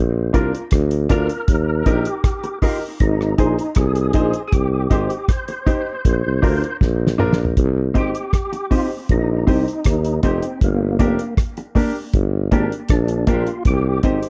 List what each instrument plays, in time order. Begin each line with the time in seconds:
Already playing: tuba A#1
0.33 tuba C2, upright piano D4 F4 A#4, clean electric guitar D4 F4 A#4, kick, closed hi-hat
0.54 upright piano F4 A#4, closed hi-hat
0.71 tuba D2, kick, cross-stick, closed hi-hat
0.91 closed hi-hat
1.09 tuba D2, upright piano D4 F4 A#4, clean electric guitar D4 F4 A#4, tonewheel organ A#4, kick, closed hi-hat
1.29 upright piano F4 A#4, closed hi-hat
1.48 tuba D#2, kick, closed hi-hat
1.86 tuba A#1, upright piano D#4 G4 A#4, clean electric guitar D#4 G4 A#4, kick, closed hi-hat
2.05 tonewheel organ G4, closed hi-hat
2.24 kick, cross-stick, closed hi-hat
2.43 muted clean electric guitar stroke, closed hi-hat
2.62 upright piano D#4 G4 A#4, clean electric guitar D#4 G4 A#4, tonewheel organ F4, kick, open hi-hat
3.00 tuba G#1, tonewheel organ D#4, kick, closed hi-hat
3.21 cross-stick
3.38 tuba A#1, upright piano D#4 G#4 C5, clean electric guitar D#4 G#4 C5, kick, closed hi-hat
3.59 upright piano G#4 C5, closed hi-hat
3.75 tuba C2, tonewheel organ G#4, kick, cross-stick, closed hi-hat
3.95 closed hi-hat
4.13 tuba A#1, clean electric guitar D#4 G#4 C5, upright piano D#4 G#4 C5, kick, closed hi-hat
4.33 upright piano G#4 C5, closed hi-hat
4.48 tonewheel organ G#4
4.52 tuba C2, tonewheel organ G4, kick, closed hi-hat
4.90 tuba G#1, upright piano D#4 G4 C5, clean electric guitar D#4 G4 C5, kick, closed hi-hat
5.10 closed hi-hat
5.28 tonewheel organ C5, kick, cross-stick, closed hi-hat
5.48 muted clean electric guitar stroke, closed hi-hat
5.66 upright piano D#4 G4 C5, clean electric guitar D#4 G4 C5, kick, closed hi-hat
6.05 tuba A#1, kick, closed hi-hat
6.26 tuba C2
6.42 tuba D2, clean electric guitar D4 F4 A#4, upright piano D4 F4 A#4, kick, open hi-hat
6.63 upright piano F4 A#4, closed hi-hat
6.81 tuba A#1, kick, snare
7.07 snare
7.18 tuba A#1, clean electric guitar D4 F4 A#4, upright piano D4 F4 A#4, mid tom
7.33 snare
7.39 upright piano F4 A#4
7.45 floor tom
7.57 tuba C2, kick, closed hi-hat
7.94 tuba G#1, clean electric guitar C4 D#4 G4, upright piano D#4 G4 C5, tonewheel organ G4, kick, closed hi-hat
8.15 closed hi-hat
8.33 kick, cross-stick, closed hi-hat
8.53 muted clean electric guitar stroke, closed hi-hat
8.71 clean electric guitar C4 D#4 G4, upright piano D#4 G4 C5, tonewheel organ F4, kick, open hi-hat
9.09 tuba A#1, tonewheel organ D#4, kick, closed hi-hat
9.47 tuba C2, clean electric guitar C4 D#4 G4, upright piano D#4 G4 C5, kick, open hi-hat
9.68 closed hi-hat
9.84 tuba D#2, kick, cross-stick, closed hi-hat
10.04 closed hi-hat
10.23 tuba F1, clean electric guitar C4 D#4 G4, tonewheel organ C4, upright piano D#4 G4 C5, kick, closed hi-hat
10.42 closed hi-hat
10.61 tuba G1, tonewheel organ A#3, kick, closed hi-hat
10.99 tuba F1, clean electric guitar A#3 D4 G4, upright piano D4 G4 A#4, kick, closed hi-hat
11.19 closed hi-hat
11.37 kick, cross-stick, closed hi-hat
11.57 muted clean electric guitar stroke, closed hi-hat
11.75 clean electric guitar A#3 D4 G4, upright piano D4 G4 A#4, kick, open hi-hat
12.14 tuba G1, kick, closed hi-hat
12.51 tuba G#1, clean electric guitar A#3 D4 G4, upright piano D4 G4 A#4, tonewheel organ D4, kick, closed hi-hat
12.72 closed hi-hat
12.89 tuba A#1, tonewheel organ D4, kick, cross-stick, closed hi-hat
13.08 closed hi-hat
13.27 tuba A#1, clean electric guitar A#3 D4 G4, upright piano D4 G4 A#4, tonewheel organ F4, kick, closed hi-hat
13.47 closed hi-hat
13.65 tuba C2, tonewheel organ G4, kick, closed hi-hat
14.03 tuba G#1, clean electric guitar C4 D#4 G4, upright piano D#4 G4 C5, kick, closed hi-hat
14.23 closed hi-hat